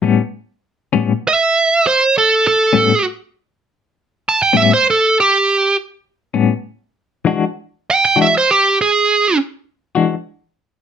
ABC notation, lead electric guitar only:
X:1
M:12/8
L:1/16
Q:3/8=67
K:Amix
V:1 name="Lead electric guitar"
z8 e4 =c2 A2 A4 z4 | z4 a g e =c A2 G4 z8 z2 | z4 g g e =c G2 ^G4 z8 z2 |]